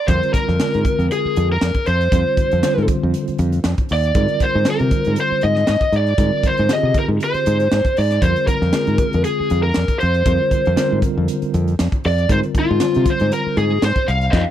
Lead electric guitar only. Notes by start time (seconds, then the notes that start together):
0.07 C5
0.33 A#4
1.12 G#4
1.52 A#4
1.88 C5
3.93 D5
4.43 C5
4.70 A#4
5.20 C5
5.43 D#5
5.71 D#5
5.96 D5
6.46 C5
6.73 D#5
6.99 A#4
7.24 C5
7.98 D5
8.22 C5
8.48 A#4
9.25 G#4
9.63 A#4
9.99 C5
12.06 D5
12.32 C5
12.59 F4
13.10 C5
13.34 A#4
13.58 G#4
13.85 C5
14.08 F5
14.31 C5 D#5 F5